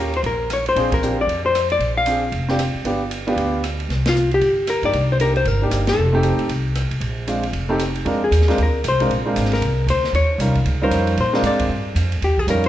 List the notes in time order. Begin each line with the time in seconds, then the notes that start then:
Already playing: D#2 A#3 C#4 A#4
0.00 F4 G4
0.14 C5, ride
0.23 A#1 A#4, ride
0.50 C#5, cross-stick, hi-hat pedal, ride
0.66 C5, ride
0.75 A#1 C4 D4 F4 G#4, ride
0.92 A#4, kick, ride
1.02 C4 D4 F4 G4, hi-hat pedal
1.21 D5
1.27 F2, ride
1.46 C5
1.55 cross-stick, hi-hat pedal, ride
1.70 D5, ride
1.79 A#1, ride
1.97 F5
2.06 C4 D4 F4 G#4, hi-hat pedal, ride
2.32 F1, ride
2.48 C4 D4 F4 G4, snare
2.59 cross-stick, hi-hat pedal, ride
2.75 muted upright bass stroke
2.84 G1 B3 D4 F4 G4, ride
3.11 hi-hat pedal, ride
3.27 B3 D4 F4 G4, ride
3.36 D2, ride
3.64 cross-stick, hi-hat pedal, ride
3.80 ride
3.89 C2, snare, ride
4.06 F4, snare, ride
4.16 hi-hat pedal
4.31 G4, ride
4.41 G1, ride
4.67 A#4, cross-stick, hi-hat pedal, ride
4.82 G2 A#3 D4 D#4 G4 D5, ride
4.93 C2, ride
5.12 C5
5.19 A#3 D4 D#4 G4 A#4, hi-hat pedal, ride
5.36 C5, ride
5.45 G1 A#4, ride
5.62 A#3 D4 D#4 G4
5.71 G1, cross-stick, hi-hat pedal, ride
5.87 A4, snare, ride
5.97 F1
6.13 A3 C4 D#4 G4
6.23 hi-hat pedal, ride
6.39 ride
6.49 C2, ride
6.75 cross-stick, hi-hat pedal, ride
6.91 C2, ride
7.00 A#1, ride
7.27 G#3 C4 D4 F4, hi-hat pedal, ride
7.43 ride
7.53 F1, ride
7.69 A3 C4 D#4 G4
7.79 cross-stick, hi-hat pedal, ride
7.96 ride
8.05 F2 G#3 C4 D4 F4 A#4, ride
8.24 G#4
8.31 D#2, hi-hat pedal, ride
8.42 snare
8.48 G#3 C4 D4 F4 A#4, snare, ride
8.58 D2, ride
8.63 A#4
8.84 C2, hi-hat pedal, ride
8.88 C5
9.00 G#3 C4 D4 F4 A#4, ride
9.09 A#1, ride
9.25 G#3 C4 D4 F4 A#4
9.36 G#1, hi-hat pedal, ride
9.45 snare
9.52 A#4, snare, ride
9.61 C2, ride
9.87 D2 C5, hi-hat pedal, ride
10.04 snare
10.13 D#2 C#5, ride
10.38 C2 G3 C#4 D#4 F4 A#4, hi-hat pedal, ride
10.55 kick, ride
10.65 C#2, ride
10.82 G3 C#4 D#4 F4 A#4 C5
10.91 F2, hi-hat pedal, ride
11.07 ride
11.17 A#2 C5, ride
11.33 G#3 C4 D4 F4 A#4, snare
11.43 G#2, hi-hat pedal, ride
11.47 D5
11.59 kick, ride
11.69 G2
11.95 F2, hi-hat pedal, ride
12.12 ride
12.22 D#2 G4, ride
12.38 G#4, kick
12.47 F2 G3 C#4 D#4 F4 A#4, hi-hat pedal, ride
12.64 ride